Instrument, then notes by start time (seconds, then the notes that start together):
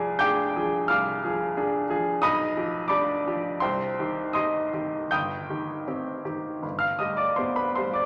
upright piano
Already playing: C2 F3 G#4 D5 G#5 D6
0.19 D4 G#4 G5 D6 G6
0.56 F3 G#4
0.88 C2 F5 D6 F6
1.24 F3 G#4
1.57 D4 G#4
1.90 F3 G#4
2.22 B1 D#5 B5 D#6
2.56 F3 G4
2.88 D4 G4 D5 B5 D6
3.27 F3 G4
3.60 C2 C5 G5 C6
3.99 D#3 G4
4.33 D#4 G4 D#5 C6 D#6
4.73 D#3 G4
5.11 G1 G5 D#6 G6
5.50 D#3 G4
5.88 C4 G4
6.25 D#3 G4
6.63 G1
6.79 F5 F6
6.99 G3 G4 D#5 D#6
7.17 D5 D6
7.36 B3 G4 C5 C6
7.56 B4 B5
7.76 G3 G4 C5 C6
7.93 D5 D6